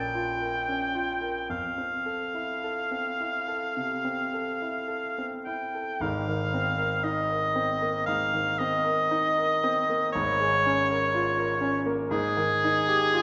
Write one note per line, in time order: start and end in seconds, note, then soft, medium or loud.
0.00 1.45 A#1 soft
0.00 0.68 C#4 soft
0.00 0.30 A#4 soft
0.00 1.49 G5 medium
0.15 0.57 F4 soft
0.40 0.83 A#4 soft
0.68 1.11 C#4 soft
0.95 1.39 F4 soft
1.21 1.49 A#4 soft
1.50 3.72 F2 soft
1.50 5.28 F5 medium
1.78 2.24 C4 soft
2.06 2.52 A4 soft
2.35 2.81 E4 soft
2.64 3.09 A4 soft
2.91 3.37 C4 soft
3.21 3.65 E4 soft
3.48 3.93 A4 soft
3.77 4.21 C3 soft
4.05 4.50 C4 soft
4.34 4.78 A4 soft
4.62 5.07 E4 soft
4.88 5.34 A4 soft
5.18 5.63 C4 soft
5.45 5.90 E4 soft
5.45 6.03 G5 medium
5.75 6.01 A4 soft
6.00 8.02 G#1 medium
6.00 8.03 G#2 medium
6.00 7.05 F5 medium
6.28 6.68 D#3 soft
6.54 6.94 C4 soft
6.78 7.19 A#4 soft
7.04 7.44 D#4 soft
7.04 8.06 D#5 medium
7.30 7.71 A#4 soft
7.56 7.97 C4 soft
7.82 8.23 A#3 soft
8.06 10.11 G#2 soft
8.06 8.60 F5 medium
8.34 8.75 D#3 soft
8.59 9.02 C4 soft
8.59 10.12 D#5 medium
8.85 9.27 A#4 medium
9.11 9.53 D#4 soft
9.38 9.79 A#4 soft
9.64 10.04 C4 medium
9.89 10.15 A#3 soft
10.12 12.08 G#1 medium
10.12 12.08 G#2 medium
10.12 11.81 C#5 medium
10.40 10.80 G#3 soft
10.66 11.04 C#4 medium
10.90 11.28 A#4 soft
11.14 11.53 F4 medium
11.38 11.77 A#4 medium
11.61 12.01 C#4 medium
11.86 12.11 A#3 medium
12.11 13.22 G#2 medium
12.11 13.22 G#4 loud
12.37 12.77 D#3 medium
12.64 13.04 D#4 medium
12.88 13.22 G4 medium
13.14 13.22 F4 medium